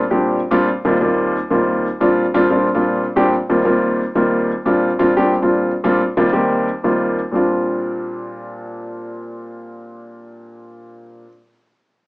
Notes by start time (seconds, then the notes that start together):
0.10 A#2 G3 C4 D4 G4
0.51 A#2 G3 C4 D4 F4
0.85 D#2 G3 A#3 C4 F4
1.01 D#2 G3 A#3 C4 F4
1.50 D#2 G3 A#3 C4 F4
2.00 A#2 G3 C4 D4 F4
2.34 A#2 G3 C4 D4 F4
2.50 A#2 G3 C4 D4 F4
2.75 A#2 G3 C4 D4 F4
3.16 A#2 G3 C4 D4 G4
3.50 D#2 G3 A#3 C4 F4
3.65 D#2 G3 A#3 C4 F4
4.15 D#2 G3 A#3 C4 F4
4.65 A#2 G3 C4 D4 F4
4.99 A#2 G3 C4 D4 F4
5.17 A#2 G3 C4 D4 G4
5.42 A#2 G3 C4 D4 F4
5.84 A#2 G3 C4 D4 F4
6.17 D#2 G3 A#3 C4 F4
6.33 D#2 G3 A#3 C4 G4
6.84 D#2 G3 A#3 C4 F4
7.31 A#2 G3 C4 D4
7.36 F4